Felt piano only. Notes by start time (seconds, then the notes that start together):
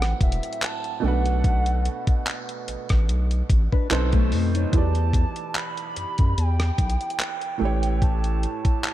Already playing: A2 F#3 A3 C4 E4 B4
1.00 B2 A3 D4
1.06 F#4 B4
3.90 B2 B3 D#4 A4 C5
4.70 E3 B3 E4
4.76 G4 D5
7.58 A2 A3 G4
7.63 B4 C#5